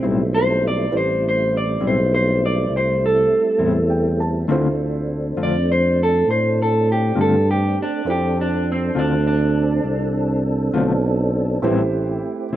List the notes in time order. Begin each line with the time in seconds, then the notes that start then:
Already playing: G3 A3 C4 E4 B4 C5
0.03 B1 A2 G3 C4 E4
0.34 C5
0.68 D5
0.91 A1 G3 A3 C4 E4 G4 B4 C5
0.97 C5
1.29 C5
1.57 D5
1.81 B1 A2 G3 C4 E4
1.87 C5
2.15 C5
2.46 D5
2.70 C2
2.77 C5
3.06 A4
3.59 E2 A2 G3 C4 E4
3.90 G5
4.20 A5
4.47 D2 D3 A3 C4 D4 E4 F4
4.52 A4 C5
5.37 F2 D3 A3 C4 F4
5.43 D5
5.72 C5
6.03 A4
6.28 A2 C5
6.62 A4
6.92 G4
7.15 G2 D3 A3 C4 F4
7.21 A4
7.51 G4
7.83 D4
8.05 F2 C4 D4 E4 F4 A4 C5
8.10 G4
8.41 D4
8.72 C4
8.95 D2 D3 A3 C4 D4 F4
9.27 D4
9.84 C2
10.74 B1 D3 A3 C4 F4
11.62 A1 A2 G3 A3 C4 E4 G4 B4 C5
12.52 E1 C4 E4